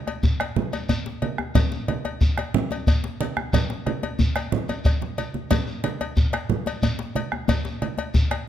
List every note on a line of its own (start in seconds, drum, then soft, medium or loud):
0.07 bombo rim soft
0.07 cowbell soft
0.07 djembe slap soft
0.07 djembe tone medium
0.23 bombo low medium
0.23 djembe slap soft
0.23 djembe bass medium
0.23 shekere medium
0.40 bombo rim medium
0.40 cowbell soft
0.40 djembe slap medium
0.40 high conga soft
0.56 high conga medium
0.56 low conga medium
0.73 cowbell soft
0.73 djembe slap soft
0.73 djembe tone medium
0.73 shekere soft
0.89 bombo low medium
0.89 cowbell soft
0.89 djembe bass medium
0.89 shekere medium
1.06 djembe slap medium
1.22 cowbell soft
1.22 high conga medium
1.38 bombo rim medium
1.38 djembe tone medium
1.38 high conga soft
1.55 bombo low medium
1.55 cowbell medium
1.55 low conga medium
1.55 djembe bass medium
1.55 shekere medium
1.72 djembe slap medium
1.72 shekere soft
1.88 bombo rim soft
1.88 cowbell soft
1.88 high conga medium
2.05 bombo rim soft
2.05 cowbell soft
2.05 djembe slap soft
2.05 djembe tone medium
2.21 bombo low loud
2.21 djembe slap soft
2.21 djembe bass medium
2.21 shekere medium
2.38 bombo rim medium
2.38 cowbell soft
2.38 djembe slap medium
2.38 high conga soft
2.54 high conga medium
2.54 low conga medium
2.71 cowbell soft
2.71 djembe slap soft
2.71 djembe tone medium
2.71 shekere soft
2.87 bombo low medium
2.87 cowbell soft
2.87 djembe bass medium
2.87 shekere medium
3.04 djembe slap medium
3.21 cowbell soft
3.21 high conga medium
3.37 bombo rim medium
3.37 djembe tone medium
3.37 high conga soft
3.53 bombo rim soft
3.53 bombo low medium
3.53 cowbell medium
3.53 djembe slap soft
3.53 high conga soft
3.53 djembe bass medium
3.53 low conga medium
3.53 shekere medium
3.70 bombo rim soft
3.70 djembe slap medium
3.86 bombo rim soft
3.86 cowbell soft
3.86 djembe slap soft
3.86 high conga medium
4.03 cowbell soft
4.03 djembe slap soft
4.03 djembe tone medium
4.03 high conga soft
4.19 bombo low loud
4.19 djembe bass medium
4.19 shekere medium
4.36 bombo rim medium
4.36 cowbell soft
4.36 djembe slap medium
4.36 high conga soft
4.36 shekere soft
4.52 high conga medium
4.52 low conga medium
4.69 cowbell soft
4.69 djembe tone medium
4.69 low conga soft
4.69 shekere soft
4.85 bombo low medium
4.85 cowbell soft
4.85 djembe slap soft
4.85 djembe bass medium
4.85 low conga soft
4.85 shekere medium
5.01 djembe slap soft
5.01 low conga medium
5.18 cowbell soft
5.18 high conga medium
5.18 shekere soft
5.34 high conga medium
5.34 djembe tone soft
5.51 bombo low medium
5.51 cowbell medium
5.51 low conga medium
5.51 djembe bass medium
5.51 shekere medium
5.67 shekere soft
5.84 bombo rim soft
5.84 cowbell soft
5.84 high conga medium
6.01 bombo rim soft
6.01 cowbell medium
6.01 djembe slap soft
6.01 djembe tone medium
6.17 bombo low medium
6.17 djembe slap soft
6.17 djembe bass medium
6.17 shekere medium
6.33 bombo rim medium
6.33 cowbell medium
6.33 djembe slap medium
6.33 high conga soft
6.50 high conga medium
6.50 low conga medium
6.66 cowbell medium
6.66 djembe slap soft
6.66 djembe tone medium
6.66 shekere soft
6.83 bombo low medium
6.83 cowbell medium
6.83 djembe bass medium
6.83 shekere medium
6.99 djembe slap medium
7.15 cowbell medium
7.15 high conga medium
7.32 bombo rim medium
7.32 high conga soft
7.32 djembe tone medium
7.48 bombo low medium
7.48 cowbell medium
7.48 djembe bass medium
7.48 low conga medium
7.48 shekere medium
7.65 djembe slap medium
7.65 shekere soft
7.82 bombo rim soft
7.82 cowbell soft
7.82 high conga medium
7.98 bombo rim soft
7.98 cowbell medium
7.98 djembe slap soft
7.98 djembe tone medium
8.14 bombo low medium
8.14 djembe slap soft
8.14 djembe bass medium
8.14 shekere medium
8.31 bombo rim medium
8.31 cowbell medium
8.31 djembe slap medium
8.31 high conga soft